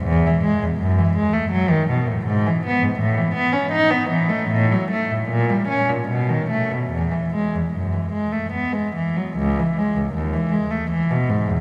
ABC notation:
X:1
M:3/4
L:1/16
Q:1/4=78
K:E
V:1 name="Cello" clef=bass
E,, E, G, E,, F,, E, G, A, F, D, B,, A,, | G,, E, B, G,, A,, E, B, C D B, E, A, | A,, F, A, A,, ^A,, =G, C A,, B,, D, =A, B,, | E,, E, G, E,, F,, E, G, A, B, G, E, F, |
[K:C#m] C,, E, G, C,, D,, E, G, A, E, B,, G,, E,, |]